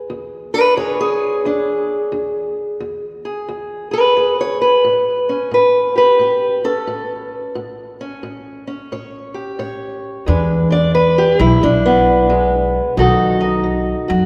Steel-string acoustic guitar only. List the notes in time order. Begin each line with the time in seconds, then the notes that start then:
Already playing: G#4 B4
0.10 E2
0.54 D4 G4 B4
0.77 E2 G#4 C#5
1.01 G#4
1.45 E2 D4
2.12 E2
2.80 E2
3.25 G#4
3.49 E2
3.91 G#4 B4
4.17 E2 G#4
4.41 C#5
4.62 B4
4.84 A2
5.29 C#4
5.51 A2 B4
5.96 G4 B4
6.19 A2 G4
6.64 C#4 A4
6.87 A2
7.55 A2
8.01 C#4
8.23 A2
8.67 C#4
8.92 A2 C#5
9.34 G4
9.59 A2 C#5
10.26 E2 G#3 D4 B4
10.70 D4 D5
10.94 E2 B4
11.18 G4
11.40 E4
11.61 E2 D4
11.86 B3
12.30 E2 G#3
12.97 B2 D#3 D#4 F#4 A4
13.41 D#4
13.64 B2
14.08 F#4